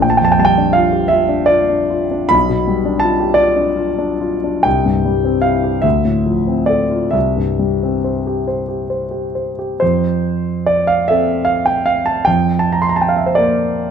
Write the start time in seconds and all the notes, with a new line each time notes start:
Already playing: A#1
0.02 G5
0.10 A5
0.17 G5
0.21 F2 A5
0.32 G5
0.39 G3 A5
0.45 G5
0.58 D4
0.73 F4 F5
0.93 G4
1.08 F4 E5
1.29 D4
1.46 F4 D5
1.69 D4
1.90 F4
2.11 D4
2.29 B1 B5
2.49 B2
2.67 G3
2.85 D4
3.00 F4 A5
3.20 G4
3.34 F4 D5
3.56 D4
3.76 F4
3.98 D4
4.21 F4
4.44 D4
4.63 C2 G5
4.85 G2
5.05 G3
5.25 C4
5.42 E4 F5
5.64 G4
5.82 D2 E5
6.05 A2
6.26 F3
6.47 C4
6.66 A4 D5
6.91 F4
7.11 C2 E5
7.36 G2
7.59 G3
7.83 C4
8.04 C5
8.27 G4
8.48 C5
8.68 G4
8.90 C5
9.11 G4
9.35 C5
9.59 G4
9.80 F2 C5
10.66 D5
10.87 F5
11.08 C4 A4 E5
11.45 F5
11.66 G5
11.86 F5
12.06 A5
12.25 F2 G5
12.59 A5
12.72 A#5
12.82 C6
12.89 A#5
12.96 A5
13.02 G5
13.09 F5
13.17 E5
13.26 C5
13.35 A#3 A#4 D5